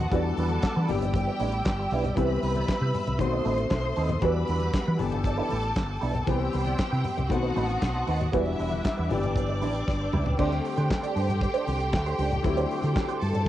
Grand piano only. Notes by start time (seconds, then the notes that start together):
Already playing: D#3 A3 B3 C4 F#4
0.11 E3 G3 B3 D4 F#4
0.87 E3 G3 A#3 D4 G4
0.95 B3
2.16 E3 G3 B3 C4 G4
3.18 D#3 A3 B3 C4 F#4
4.22 E3 G3 B3 D4 F#4
4.98 E3 G3 B3 D4 G4
6.26 E3 G3 B3 C4 G4
7.29 D#3 A3 B3 C4 F#4
8.33 E3 G3 B3 D4 F#4
9.09 E3 G3 A#3 D4 G4
9.17 B3
10.38 D3 G3 A3 C4 G4
12.43 D3 F#3 A3 C4 E4
12.49 G3